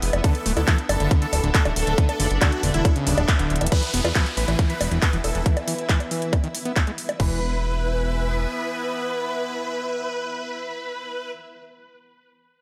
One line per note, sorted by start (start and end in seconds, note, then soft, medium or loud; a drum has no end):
0.00 0.10 F1 loud
0.00 3.71 E3 medium
0.00 0.28 B3 loud
0.00 3.71 B3 medium
0.00 1.05 E4 medium
0.00 1.31 B4 medium
0.00 7.20 E5 medium
0.00 open hi-hat medium
0.13 0.21 F1 medium
0.13 closed hi-hat medium
0.13 high bongo medium
0.24 0.34 D3 medium
0.24 3.72 D4 medium
0.24 0.44 A4 loud
0.24 kick loud
0.24 closed hi-hat medium
0.35 closed hi-hat medium
0.46 0.53 D1 loud
0.46 0.53 A3 medium
0.46 open hi-hat loud
0.50 4.57 A4 medium
0.57 0.64 D2 medium
0.57 0.61 E4 medium
0.57 0.77 A4 loud
0.57 closed hi-hat medium
0.57 high bongo soft
0.68 0.78 E3 loud
0.68 kick loud
0.68 clap loud
0.68 closed hi-hat medium
0.78 closed hi-hat medium
0.89 0.97 F#1 loud
0.89 1.09 A4 loud
0.89 open hi-hat medium
0.89 high bongo medium
1.00 1.08 F#1 medium
1.00 1.10 D3 medium
1.00 closed hi-hat medium
1.11 1.21 D3 medium
1.11 kick loud
1.11 closed hi-hat medium
1.22 1.26 D3 loud
1.22 1.42 A4 loud
1.22 closed hi-hat medium
1.33 1.40 D1 loud
1.33 open hi-hat loud
1.33 high bongo soft
1.44 1.51 D1 medium
1.44 1.51 D3 medium
1.44 closed hi-hat medium
1.55 1.68 A4 medium
1.55 kick loud
1.55 clap loud
1.55 closed hi-hat medium
1.65 1.73 D1 medium
1.65 1.70 D3 medium
1.65 1.96 A3 loud
1.65 closed hi-hat medium
1.65 high bongo medium
1.76 1.84 D1 loud
1.76 1.96 A4 loud
1.76 open hi-hat medium
1.87 1.95 D1 medium
1.87 1.94 D3 medium
1.87 closed hi-hat medium
1.98 2.08 D3 medium
1.98 2.14 B3 medium
1.98 kick loud
1.98 closed hi-hat medium
2.09 2.29 A4 loud
2.09 closed hi-hat medium
2.09 high bongo soft
2.20 2.27 F#1 loud
2.20 2.27 D3 medium
2.20 2.81 D4 loud
2.20 open hi-hat loud
2.31 2.38 F#1 medium
2.31 closed hi-hat medium
2.41 2.52 D3 medium
2.41 2.62 F#4 loud
2.41 kick loud
2.41 clap loud
2.41 closed hi-hat medium
2.41 high bongo medium
2.52 closed hi-hat medium
2.63 2.71 E1 loud
2.63 2.86 D3 medium
2.63 open hi-hat medium
2.74 2.82 E1 medium
2.74 2.94 E4 medium
2.74 closed hi-hat medium
2.85 2.89 C#3 medium
2.85 kick loud
2.85 closed hi-hat medium
2.85 high bongo soft
2.96 3.19 C#3 loud
2.96 closed hi-hat medium
3.07 3.14 D1 loud
3.07 3.27 D4 loud
3.07 open hi-hat loud
3.18 3.25 D1 medium
3.18 3.22 A3 medium
3.18 closed hi-hat medium
3.18 high bongo medium
3.28 kick loud
3.28 clap loud
3.28 closed hi-hat medium
3.39 3.47 D1 medium
3.39 3.63 D3 medium
3.39 closed hi-hat medium
3.50 3.58 D1 loud
3.50 closed hi-hat medium
3.56 closed hi-hat medium
3.61 3.69 D1 medium
3.61 3.68 E3 medium
3.61 closed hi-hat medium
3.61 high bongo soft
3.67 closed hi-hat medium
3.72 7.19 E3 medium
3.72 3.82 E3 medium
3.72 7.19 B3 medium
3.72 7.19 E4 medium
3.72 3.92 B4 loud
3.72 kick loud
3.72 closed hi-hat medium
3.72 downlifter medium
3.72 high bongo soft
3.83 closed hi-hat medium
3.94 4.01 E1 loud
3.94 4.01 B3 medium
3.94 7.20 B4 medium
3.94 open hi-hat loud
4.05 4.12 E2 medium
4.05 4.09 F4 medium
4.05 4.25 B4 loud
4.05 closed hi-hat medium
4.05 high bongo medium
4.15 4.26 F3 loud
4.15 kick loud
4.15 clap loud
4.15 closed hi-hat medium
4.26 closed hi-hat medium
4.37 4.45 A1 loud
4.37 4.57 B4 loud
4.37 open hi-hat medium
4.48 4.56 A1 medium
4.48 4.58 E3 medium
4.48 closed hi-hat medium
4.48 high bongo soft
4.59 4.69 E3 medium
4.59 kick loud
4.59 closed hi-hat medium
4.70 4.74 E3 loud
4.70 4.90 B4 loud
4.70 closed hi-hat medium
4.81 4.88 E1 medium
4.81 open hi-hat loud
4.81 high bongo medium
4.91 4.99 E1 medium
4.91 4.98 E3 medium
4.91 closed hi-hat medium
5.02 5.16 B4 medium
5.02 kick loud
5.02 clap loud
5.02 closed hi-hat medium
5.13 5.21 E1 medium
5.13 5.17 E3 medium
5.13 closed hi-hat medium
5.24 5.32 E1 loud
5.24 5.44 A4 loud
5.24 open hi-hat medium
5.24 high bongo soft
5.35 5.43 E1 medium
5.35 5.42 E3 medium
5.35 closed hi-hat medium
5.46 5.56 E3 medium
5.46 kick loud
5.46 closed hi-hat medium
5.57 closed hi-hat medium
5.57 high bongo medium
5.68 5.75 E3 medium
5.68 open hi-hat loud
5.79 closed hi-hat medium
5.89 6.00 E3 medium
5.89 kick loud
5.89 clap loud
5.89 closed hi-hat medium
6.00 closed hi-hat medium
6.00 high bongo soft
6.11 6.34 E3 medium
6.11 open hi-hat medium
6.22 closed hi-hat medium
6.33 6.37 D#3 medium
6.33 kick loud
6.33 closed hi-hat medium
6.33 high bongo medium
6.44 6.48 D#3 loud
6.44 closed hi-hat medium
6.55 open hi-hat loud
6.65 6.72 B3 medium
6.65 closed hi-hat medium
6.76 kick loud
6.76 clap loud
6.76 closed hi-hat medium
6.76 high bongo soft
6.87 6.91 G#3 medium
6.87 closed hi-hat medium
6.98 open hi-hat medium
7.09 closed hi-hat medium
7.09 high bongo medium
7.20 8.46 E1 medium
7.20 11.31 E3 medium
7.20 7.40 E3 medium
7.20 11.31 B3 medium
7.20 11.31 E4 medium
7.20 11.31 B4 loud
7.20 kick loud
7.20 crash medium
7.26 11.38 B4 medium
7.33 11.44 E5 medium